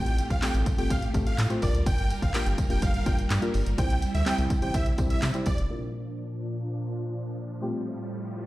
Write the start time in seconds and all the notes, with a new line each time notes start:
Already playing: A1 A3 C4 F4 G4 A4 G5
0.06 closed hi-hat
0.18 closed hi-hat, tambourine
0.30 C2 F5, kick, closed hi-hat, tambourine
0.42 A3 C4 F4 G4 A4 G5, snare, clap, closed hi-hat, tambourine
0.54 A1, closed hi-hat
0.66 kick, closed hi-hat, tambourine
0.78 G1 A3 C4 F4 G4 A4 G5, closed hi-hat
0.90 A1 F5, kick, closed hi-hat, tambourine
1.02 closed hi-hat
1.14 A1 A3 C4 F4 G4 A4, kick, closed hi-hat, tambourine
1.27 F5, closed hi-hat
1.38 A2, snare, clap, closed hi-hat, tambourine
1.50 A3 C4 F4 G4 C5, closed hi-hat
1.62 G1 G3 A#3 D4 F4 G4 A#4 D5, kick, open hi-hat, tambourine
1.74 D2, closed hi-hat
1.86 G1 G5, kick, closed hi-hat, tambourine
1.98 closed hi-hat
2.10 closed hi-hat, tambourine
2.22 A1 F5, kick, closed hi-hat
2.34 A#3 D4 F4 G4 A#4 G5, snare, clap, closed hi-hat, tambourine
2.46 G1, closed hi-hat
2.58 kick, closed hi-hat, tambourine
2.70 F1 A#3 D4 F4 G4 A#4 G5, closed hi-hat, tambourine
2.82 G1 F5, kick, closed hi-hat, tambourine
2.94 closed hi-hat
3.06 G1 A#3 D4 F4 G4 A#4 G5, kick, closed hi-hat, tambourine
3.19 closed hi-hat
3.30 G2, snare, clap, closed hi-hat, tambourine
3.42 A#3 D4 F4 G4 A#4, closed hi-hat, tambourine
3.54 G1, open hi-hat, tambourine
3.66 G1, closed hi-hat, tambourine
3.78 C2 C3 G3 C4 E4 G4 C5 G5, kick, closed hi-hat, tambourine
3.90 closed hi-hat
4.02 closed hi-hat, tambourine
4.14 D2 E5, closed hi-hat, tambourine
4.26 G3 C4 E4 G4 C5 G5, snare, clap, closed hi-hat, tambourine
4.38 C2, closed hi-hat
4.50 kick, closed hi-hat, tambourine
4.62 A1 G3 C4 E4 G4 C5 G5, closed hi-hat
4.74 C2 E5, kick, closed hi-hat, tambourine
4.86 closed hi-hat
4.98 C2 G3 C4 E4 G4 C5, kick, closed hi-hat, tambourine
5.10 E5, closed hi-hat
5.22 C3, snare, clap, closed hi-hat, tambourine
5.34 G3 C4 E4 G4 C5, closed hi-hat, tambourine
5.46 C2 D5, kick, closed hi-hat, tambourine
5.58 F1, closed hi-hat
5.70 A#2 F3 A#3 D4 F4 A#4
7.62 A2 G3 A3 C4 F4 G4